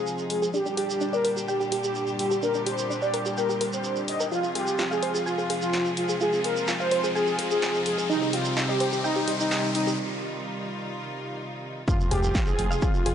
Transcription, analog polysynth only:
Already playing: G#4
0.30 G#4
0.54 G4
0.77 G4
1.13 A#4
1.48 G4
1.84 G4
2.19 G4
2.43 A#4
2.66 C5
3.02 D5
3.37 A#4
3.73 C5
4.08 D#5
4.32 F4
4.55 G4
4.91 G#4
5.26 F4
5.62 F4
5.97 F4
6.21 G#4
6.45 A#4
6.80 C5
7.15 G#4
7.51 G#4
7.86 G#4
8.10 D#4
8.33 F4
8.69 G4
9.04 D#4
9.40 D#4
9.75 D#4
11.88 F4
12.12 G4
12.47 G#4
12.82 F4

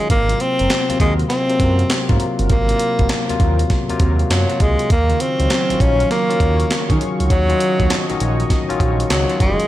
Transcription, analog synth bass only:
0.10 G#1
0.60 F#1
0.90 D#2
1.00 D#2
1.60 F#2
2.10 G#2
2.39 F#1
2.50 G#1
3.00 G#1
3.30 D#2
3.40 D#2
3.90 D#2
4.00 D#2
4.30 F#2
4.61 C#2
4.90 D#2
5.40 C#2
5.70 A#1
5.81 A#1
6.40 D#2
6.90 D#3
7.20 C#2
7.30 D#2
7.80 D#2
8.10 A#1
8.21 A#1
8.70 A#1
8.80 A#1
9.11 C#2
9.41 F#1

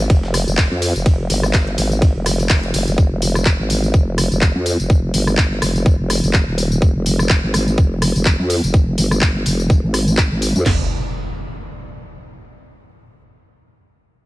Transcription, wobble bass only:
0.10 F1
0.47 F1
0.71 F2
0.95 F1
1.30 G1
1.78 G#1
2.15 F1
2.50 F1
2.74 F1
2.87 F1
2.98 F1
3.11 F1
3.59 G#1
3.94 F1
4.31 F1
4.55 F2
4.79 F1
5.14 G1
5.62 F1
5.99 F1
6.23 F1
6.47 D#1
6.82 F1
6.95 F1
7.43 G#1
7.78 F1
8.15 F1
8.39 F2
8.63 F1
8.98 G1
9.46 F1
9.83 G#1
10.31 G#1
10.55 F2
10.66 F1

